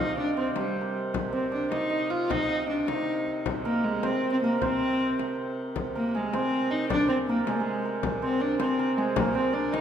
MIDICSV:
0, 0, Header, 1, 5, 480
1, 0, Start_track
1, 0, Key_signature, -3, "minor"
1, 0, Tempo, 385852
1, 1414, Time_signature, 6, 3, 24, 8
1, 6684, Tempo, 379267
1, 12298, End_track
2, 0, Start_track
2, 0, Title_t, "Hammered dulcimer"
2, 0, Program_c, 0, 15
2, 0, Note_on_c, 0, 68, 59
2, 0, Note_on_c, 0, 70, 63
2, 0, Note_on_c, 0, 72, 77
2, 0, Note_on_c, 0, 75, 83
2, 0, Note_on_c, 0, 77, 90
2, 213, Note_on_c, 0, 74, 74
2, 287, Note_off_c, 0, 75, 0
2, 456, Note_off_c, 0, 72, 0
2, 461, Note_on_c, 0, 72, 72
2, 709, Note_on_c, 0, 67, 68
2, 784, Note_off_c, 0, 68, 0
2, 1005, Note_off_c, 0, 70, 0
2, 1010, Note_on_c, 0, 70, 57
2, 1645, Note_off_c, 0, 72, 0
2, 1650, Note_on_c, 0, 72, 66
2, 1883, Note_off_c, 0, 74, 0
2, 1888, Note_on_c, 0, 74, 67
2, 2131, Note_on_c, 0, 75, 78
2, 2206, Note_off_c, 0, 74, 0
2, 2355, Note_off_c, 0, 75, 0
2, 2360, Note_on_c, 0, 75, 81
2, 2475, Note_off_c, 0, 77, 0
2, 2615, Note_on_c, 0, 77, 89
2, 2851, Note_off_c, 0, 75, 0
2, 2856, Note_on_c, 0, 75, 90
2, 3013, Note_off_c, 0, 75, 0
2, 3018, Note_on_c, 0, 75, 73
2, 3165, Note_off_c, 0, 75, 0
2, 3170, Note_on_c, 0, 75, 74
2, 3328, Note_on_c, 0, 74, 65
2, 3403, Note_off_c, 0, 75, 0
2, 3561, Note_on_c, 0, 75, 68
2, 3636, Note_off_c, 0, 74, 0
2, 4528, Note_off_c, 0, 70, 0
2, 4543, Note_on_c, 0, 70, 77
2, 4613, Note_off_c, 0, 67, 0
2, 4932, Note_off_c, 0, 72, 0
2, 5013, Note_on_c, 0, 72, 89
2, 5375, Note_off_c, 0, 77, 0
2, 5516, Note_off_c, 0, 70, 0
2, 5521, Note_on_c, 0, 70, 82
2, 5733, Note_off_c, 0, 72, 0
2, 5738, Note_on_c, 0, 72, 77
2, 6520, Note_off_c, 0, 75, 0
2, 7413, Note_off_c, 0, 70, 0
2, 7418, Note_on_c, 0, 70, 68
2, 7663, Note_on_c, 0, 68, 72
2, 7901, Note_off_c, 0, 72, 0
2, 7906, Note_on_c, 0, 72, 77
2, 8608, Note_on_c, 0, 74, 95
2, 8838, Note_off_c, 0, 72, 0
2, 8844, Note_on_c, 0, 72, 77
2, 9108, Note_off_c, 0, 70, 0
2, 9113, Note_on_c, 0, 70, 77
2, 9349, Note_off_c, 0, 68, 0
2, 9355, Note_on_c, 0, 68, 83
2, 9496, Note_off_c, 0, 68, 0
2, 9501, Note_on_c, 0, 68, 73
2, 9817, Note_off_c, 0, 70, 0
2, 9822, Note_on_c, 0, 70, 66
2, 10284, Note_off_c, 0, 72, 0
2, 10289, Note_on_c, 0, 72, 72
2, 10510, Note_off_c, 0, 74, 0
2, 10515, Note_on_c, 0, 74, 74
2, 10761, Note_off_c, 0, 72, 0
2, 10766, Note_on_c, 0, 72, 81
2, 11007, Note_off_c, 0, 70, 0
2, 11012, Note_on_c, 0, 70, 75
2, 11246, Note_off_c, 0, 68, 0
2, 11251, Note_on_c, 0, 68, 77
2, 11471, Note_off_c, 0, 70, 0
2, 11476, Note_on_c, 0, 70, 84
2, 11708, Note_off_c, 0, 72, 0
2, 11713, Note_on_c, 0, 72, 75
2, 11937, Note_off_c, 0, 74, 0
2, 11942, Note_on_c, 0, 74, 83
2, 12190, Note_on_c, 0, 75, 78
2, 12266, Note_off_c, 0, 74, 0
2, 12298, Note_off_c, 0, 68, 0
2, 12298, Note_off_c, 0, 70, 0
2, 12298, Note_off_c, 0, 72, 0
2, 12298, Note_off_c, 0, 75, 0
2, 12298, End_track
3, 0, Start_track
3, 0, Title_t, "Viola da gamba"
3, 0, Program_c, 1, 42
3, 0, Note_on_c, 1, 63, 105
3, 214, Note_off_c, 1, 63, 0
3, 225, Note_on_c, 1, 62, 90
3, 441, Note_off_c, 1, 62, 0
3, 456, Note_on_c, 1, 60, 84
3, 677, Note_off_c, 1, 60, 0
3, 709, Note_on_c, 1, 55, 74
3, 1206, Note_off_c, 1, 55, 0
3, 1649, Note_on_c, 1, 60, 82
3, 1876, Note_off_c, 1, 60, 0
3, 1899, Note_on_c, 1, 62, 84
3, 2122, Note_off_c, 1, 62, 0
3, 2128, Note_on_c, 1, 63, 92
3, 2618, Note_on_c, 1, 65, 97
3, 2636, Note_off_c, 1, 63, 0
3, 2863, Note_on_c, 1, 63, 119
3, 2882, Note_off_c, 1, 65, 0
3, 3339, Note_off_c, 1, 63, 0
3, 3347, Note_on_c, 1, 62, 87
3, 3580, Note_on_c, 1, 63, 86
3, 3599, Note_off_c, 1, 62, 0
3, 4299, Note_off_c, 1, 63, 0
3, 4545, Note_on_c, 1, 58, 95
3, 4773, Note_on_c, 1, 56, 89
3, 4792, Note_off_c, 1, 58, 0
3, 5027, Note_on_c, 1, 60, 105
3, 5046, Note_off_c, 1, 56, 0
3, 5368, Note_off_c, 1, 60, 0
3, 5376, Note_on_c, 1, 60, 92
3, 5486, Note_off_c, 1, 60, 0
3, 5510, Note_on_c, 1, 58, 88
3, 5725, Note_off_c, 1, 58, 0
3, 5735, Note_on_c, 1, 60, 108
3, 6637, Note_off_c, 1, 60, 0
3, 7434, Note_on_c, 1, 58, 88
3, 7686, Note_on_c, 1, 56, 88
3, 7705, Note_off_c, 1, 58, 0
3, 7900, Note_on_c, 1, 60, 101
3, 7919, Note_off_c, 1, 56, 0
3, 8376, Note_on_c, 1, 63, 97
3, 8395, Note_off_c, 1, 60, 0
3, 8616, Note_off_c, 1, 63, 0
3, 8623, Note_on_c, 1, 62, 115
3, 8843, Note_off_c, 1, 62, 0
3, 8857, Note_on_c, 1, 60, 97
3, 8965, Note_off_c, 1, 60, 0
3, 9101, Note_on_c, 1, 58, 98
3, 9322, Note_off_c, 1, 58, 0
3, 9342, Note_on_c, 1, 56, 70
3, 9434, Note_on_c, 1, 58, 72
3, 9453, Note_off_c, 1, 56, 0
3, 9497, Note_on_c, 1, 56, 78
3, 9516, Note_off_c, 1, 58, 0
3, 10058, Note_off_c, 1, 56, 0
3, 10299, Note_on_c, 1, 60, 94
3, 10532, Note_on_c, 1, 62, 94
3, 10551, Note_off_c, 1, 60, 0
3, 10768, Note_off_c, 1, 62, 0
3, 10775, Note_on_c, 1, 60, 96
3, 11241, Note_on_c, 1, 56, 84
3, 11260, Note_off_c, 1, 60, 0
3, 11487, Note_on_c, 1, 58, 103
3, 11506, Note_off_c, 1, 56, 0
3, 11716, Note_off_c, 1, 58, 0
3, 11723, Note_on_c, 1, 60, 101
3, 11954, Note_on_c, 1, 62, 95
3, 11973, Note_off_c, 1, 60, 0
3, 12202, Note_on_c, 1, 63, 101
3, 12221, Note_off_c, 1, 62, 0
3, 12298, Note_off_c, 1, 63, 0
3, 12298, End_track
4, 0, Start_track
4, 0, Title_t, "Hurdy-gurdy"
4, 0, Program_c, 2, 110
4, 0, Note_on_c, 2, 48, 65
4, 1422, Note_off_c, 2, 48, 0
4, 1422, Note_on_c, 2, 48, 66
4, 7190, Note_off_c, 2, 48, 0
4, 7190, Note_on_c, 2, 48, 72
4, 12298, Note_off_c, 2, 48, 0
4, 12298, End_track
5, 0, Start_track
5, 0, Title_t, "Frame drum"
5, 694, Note_on_c, 9, 64, 70
5, 818, Note_off_c, 9, 64, 0
5, 945, Note_on_c, 9, 64, 26
5, 1069, Note_off_c, 9, 64, 0
5, 1422, Note_on_c, 9, 64, 77
5, 1546, Note_off_c, 9, 64, 0
5, 2137, Note_on_c, 9, 64, 68
5, 2262, Note_off_c, 9, 64, 0
5, 2622, Note_on_c, 9, 64, 23
5, 2746, Note_off_c, 9, 64, 0
5, 2867, Note_on_c, 9, 64, 75
5, 2992, Note_off_c, 9, 64, 0
5, 3584, Note_on_c, 9, 64, 72
5, 3709, Note_off_c, 9, 64, 0
5, 4061, Note_on_c, 9, 64, 26
5, 4185, Note_off_c, 9, 64, 0
5, 4301, Note_on_c, 9, 64, 75
5, 4426, Note_off_c, 9, 64, 0
5, 5017, Note_on_c, 9, 64, 72
5, 5141, Note_off_c, 9, 64, 0
5, 5508, Note_on_c, 9, 64, 25
5, 5633, Note_off_c, 9, 64, 0
5, 5742, Note_on_c, 9, 64, 68
5, 5866, Note_off_c, 9, 64, 0
5, 5995, Note_on_c, 9, 64, 25
5, 6120, Note_off_c, 9, 64, 0
5, 6462, Note_on_c, 9, 64, 64
5, 6586, Note_off_c, 9, 64, 0
5, 7170, Note_on_c, 9, 64, 72
5, 7297, Note_off_c, 9, 64, 0
5, 7902, Note_on_c, 9, 64, 69
5, 8029, Note_off_c, 9, 64, 0
5, 8378, Note_on_c, 9, 64, 27
5, 8505, Note_off_c, 9, 64, 0
5, 8619, Note_on_c, 9, 64, 85
5, 8746, Note_off_c, 9, 64, 0
5, 9339, Note_on_c, 9, 64, 70
5, 9466, Note_off_c, 9, 64, 0
5, 10049, Note_on_c, 9, 64, 83
5, 10175, Note_off_c, 9, 64, 0
5, 10764, Note_on_c, 9, 64, 78
5, 10891, Note_off_c, 9, 64, 0
5, 11241, Note_on_c, 9, 64, 27
5, 11367, Note_off_c, 9, 64, 0
5, 11481, Note_on_c, 9, 64, 90
5, 11607, Note_off_c, 9, 64, 0
5, 11725, Note_on_c, 9, 64, 29
5, 11852, Note_off_c, 9, 64, 0
5, 12207, Note_on_c, 9, 64, 73
5, 12298, Note_off_c, 9, 64, 0
5, 12298, End_track
0, 0, End_of_file